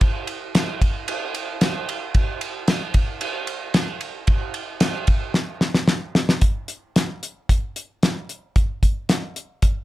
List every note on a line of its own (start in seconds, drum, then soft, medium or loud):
0.01 kick loud
0.01 ride medium
0.27 ride medium
0.55 snare loud
0.55 ride loud
0.82 kick loud
0.82 ride medium
1.08 ride loud
1.35 ride medium
1.61 snare loud
1.61 ride loud
1.89 ride medium
2.15 kick loud
2.15 ride loud
2.41 ride medium
2.68 snare loud
2.68 ride loud
2.94 kick loud
2.94 ride medium
3.21 ride loud
3.47 ride medium
3.74 snare loud
3.74 ride loud
4.01 ride medium
4.27 kick loud
4.27 ride medium
4.54 ride medium
4.80 snare loud
4.80 ride loud
5.07 kick loud
5.07 ride medium
5.34 snare medium
5.61 snare medium
5.74 snare medium
5.88 snare loud
6.15 snare medium
6.29 snare medium
6.41 kick loud
6.41 closed hi-hat medium
6.68 closed hi-hat medium
6.96 snare loud
6.96 closed hi-hat medium
7.23 closed hi-hat medium
7.49 kick medium
7.49 closed hi-hat medium
7.76 closed hi-hat medium
8.03 snare loud
8.03 closed hi-hat medium
8.29 closed hi-hat medium
8.56 kick loud
8.56 closed hi-hat medium
8.83 kick medium
8.83 closed hi-hat medium
9.09 snare loud
9.09 closed hi-hat medium
9.36 closed hi-hat medium
9.62 kick loud
9.62 closed hi-hat loud